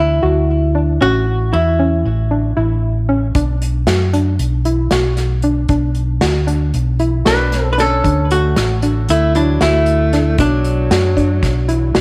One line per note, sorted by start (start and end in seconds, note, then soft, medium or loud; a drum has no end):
0.00 0.20 D2 medium
0.00 0.13 E4 medium
0.00 1.05 E4 medium
0.23 0.97 D2 medium
0.23 0.55 F#4 medium
0.75 0.91 D4 medium
1.01 1.50 A1 medium
1.01 1.33 C#4 medium
1.01 1.55 F#4 loud
1.53 2.02 E2 medium
1.53 1.69 E4 medium
1.53 2.08 E4 medium
1.79 2.12 C#4 medium
2.05 2.54 A1 medium
2.31 2.47 D4 medium
2.57 3.31 A1 medium
2.57 2.89 E4 medium
3.09 3.25 C#4 medium
3.35 3.84 B1 medium
3.35 3.68 D4 medium
3.35 kick loud
3.35 closed hi-hat medium
3.62 closed hi-hat medium
3.87 4.36 F#2 medium
3.87 4.04 F#4 medium
3.87 snare loud
3.87 closed hi-hat medium
4.13 4.46 D4 medium
4.13 closed hi-hat medium
4.39 4.88 B1 medium
4.39 closed hi-hat medium
4.65 4.82 E4 medium
4.65 closed hi-hat medium
4.91 5.66 B1 medium
4.91 5.24 F#4 medium
4.91 snare loud
4.91 closed hi-hat medium
5.17 snare soft
5.17 closed hi-hat medium
5.42 5.60 D4 medium
5.42 closed hi-hat medium
5.68 6.19 B1 medium
5.68 6.02 D4 medium
5.68 kick loud
5.68 closed hi-hat medium
5.95 closed hi-hat medium
6.21 6.71 D2 medium
6.21 6.38 F#4 medium
6.21 snare loud
6.21 closed hi-hat medium
6.47 6.80 D4 medium
6.47 closed hi-hat medium
6.74 7.23 B1 medium
6.74 closed hi-hat medium
6.99 7.16 E4 medium
6.99 closed hi-hat medium
7.25 8.01 B1 medium
7.25 7.68 D4 loud
7.25 7.58 F#4 medium
7.25 7.71 B4 medium
7.25 snare loud
7.25 closed hi-hat medium
7.52 snare soft
7.52 closed hi-hat medium
7.71 7.78 D4 soft
7.71 7.79 B4 medium
7.78 8.28 C#4 medium
7.78 7.94 D4 medium
7.78 8.31 A4 medium
7.78 snare soft
7.78 closed hi-hat medium
8.04 8.54 D2 medium
8.04 8.37 D4 medium
8.04 kick loud
8.04 closed hi-hat medium
8.31 8.80 A3 medium
8.31 8.80 F#4 medium
8.31 closed hi-hat medium
8.56 9.06 A1 medium
8.56 8.73 F#4 medium
8.56 snare loud
8.56 closed hi-hat medium
8.82 9.15 D4 medium
8.82 closed hi-hat medium
9.09 9.58 D2 medium
9.09 9.33 A3 medium
9.09 9.35 E4 loud
9.09 closed hi-hat medium
9.35 9.60 F#3 medium
9.35 9.62 D4 medium
9.35 9.51 E4 medium
9.35 closed hi-hat medium
9.61 10.35 D2 loud
9.61 10.35 A3 medium
9.61 10.36 E4 loud
9.61 9.94 F#4 medium
9.61 snare loud
9.61 closed hi-hat medium
9.86 closed hi-hat medium
10.13 10.29 D4 medium
10.13 snare soft
10.13 closed hi-hat medium
10.38 10.88 B1 medium
10.38 12.01 F#3 medium
10.38 10.71 D4 medium
10.38 12.01 D4 loud
10.38 kick loud
10.38 closed hi-hat medium
10.65 closed hi-hat medium
10.91 11.40 F#2 medium
10.91 11.07 F#4 medium
10.91 snare loud
10.91 closed hi-hat medium
11.17 11.49 D4 medium
11.17 kick medium
11.17 closed hi-hat medium
11.43 11.92 B1 medium
11.43 kick loud
11.43 snare soft
11.43 closed hi-hat medium
11.68 11.85 E4 medium
11.68 closed hi-hat medium
11.94 12.01 B1 medium
11.94 12.01 F#4 medium
11.94 snare loud
11.94 closed hi-hat medium